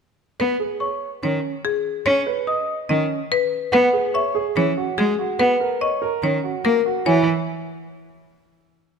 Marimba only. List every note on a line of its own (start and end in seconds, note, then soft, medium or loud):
0.40 0.67 B4 medium
1.23 1.50 C#5 medium
1.65 1.92 G#4 medium
2.06 2.33 C#5 medium
2.89 3.17 D#5 medium
3.32 3.59 B4 medium
3.73 4.00 B4 medium
4.15 4.42 E5 medium
4.57 4.84 C#5 medium
4.98 5.25 G#4 medium
5.40 5.67 B4 medium
5.81 6.08 D#5 medium
6.24 6.50 C#5 medium
6.65 6.92 A#4 medium
7.06 7.26 C#5 medium